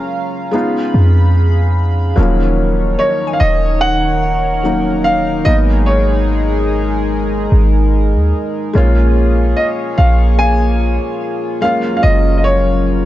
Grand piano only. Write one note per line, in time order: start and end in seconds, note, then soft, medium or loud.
2.99 3.35 C#5 medium
3.33 3.40 F5 medium
3.40 3.83 D#5 loud
3.81 5.08 F#5 loud
5.04 5.43 F5 loud
5.45 5.54 D#5 loud
5.86 8.29 C#5 medium
9.56 9.66 D#5 medium
9.98 10.36 F5 medium
10.39 11.66 G#5 loud
11.62 11.94 F5 medium
11.97 12.03 F5 medium
12.03 12.35 D#5 loud
12.37 12.44 D#5 medium
12.44 13.05 C#5 medium